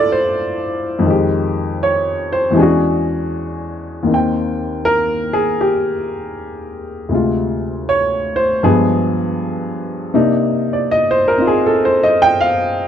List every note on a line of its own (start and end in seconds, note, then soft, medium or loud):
0.00 1.03 G2 medium
0.00 1.04 F3 medium
0.00 1.05 A3 medium
0.00 1.06 A#3 medium
0.00 1.06 E4 medium
0.00 1.06 F4 medium
0.00 1.05 A4 medium
0.00 1.05 D5 loud
0.12 1.23 C5 medium
0.99 2.53 F2 medium
0.99 2.55 D#3 medium
1.07 2.53 G#3 medium
1.07 2.53 G4 medium
1.83 2.30 C#5 medium
2.32 2.56 C5 medium
2.51 4.05 E2 medium
2.51 4.06 E3 medium
2.51 4.07 G#3 medium
2.51 2.59 G4 soft
2.57 4.08 C#4 medium
2.57 4.09 D4 medium
2.57 3.06 G#4 medium
2.62 4.10 F#4 medium
4.03 7.08 D#2 medium
4.03 7.10 D#3 medium
4.10 7.12 C4 soft
4.10 7.14 G5 medium
4.85 5.33 A#4 medium
5.33 5.58 G#4 medium
5.61 6.08 G4 medium
7.09 8.61 D2 medium
7.09 8.62 C3 soft
7.09 8.62 G#3 soft
7.14 8.64 F4 medium
7.89 8.36 C#5 medium
8.36 8.61 C5 medium
8.63 10.14 G2 medium
8.63 10.14 F3 medium
8.63 10.14 G#3 medium
8.63 10.14 B3 medium
8.63 8.93 G#4 medium
10.14 12.88 C3 medium
10.14 12.88 A#3 medium
10.14 12.88 D4 medium
10.14 11.38 D#4 medium
10.73 10.87 D5 medium
10.91 11.14 D#5 medium
11.11 11.37 C5 medium
11.28 11.46 A#4 medium
11.38 12.88 C4 soft
11.38 12.88 D#4 soft
11.38 12.88 F4 medium
11.47 11.62 G#4 medium
11.66 11.90 A4 medium
11.85 12.12 C5 medium
12.03 12.21 D#5 medium
12.22 12.37 G5 loud
12.41 12.71 F5 medium